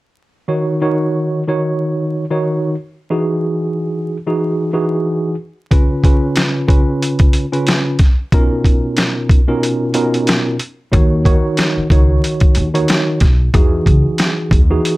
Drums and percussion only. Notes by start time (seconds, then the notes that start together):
5.71 kick, closed hi-hat
6.04 kick, closed hi-hat
6.36 snare, closed hi-hat
6.69 kick, closed hi-hat
7.02 closed hi-hat
7.19 kick, closed hi-hat
7.33 closed hi-hat
7.53 closed hi-hat
7.67 snare, closed hi-hat
7.99 kick, snare, closed hi-hat
8.32 kick, closed hi-hat
8.64 kick, closed hi-hat
8.97 snare, closed hi-hat
9.29 kick, closed hi-hat
9.63 closed hi-hat
9.94 closed hi-hat
10.14 closed hi-hat
10.27 snare, closed hi-hat
10.59 closed hi-hat
10.93 kick, closed hi-hat
11.25 kick, closed hi-hat
11.57 snare, closed hi-hat
11.90 kick, closed hi-hat
12.24 closed hi-hat
12.40 kick, closed hi-hat
12.55 closed hi-hat
12.75 closed hi-hat
12.88 snare, closed hi-hat
13.20 kick, snare, closed hi-hat
13.54 kick, closed hi-hat
13.86 kick, closed hi-hat
14.18 snare, closed hi-hat
14.51 kick, closed hi-hat
14.85 closed hi-hat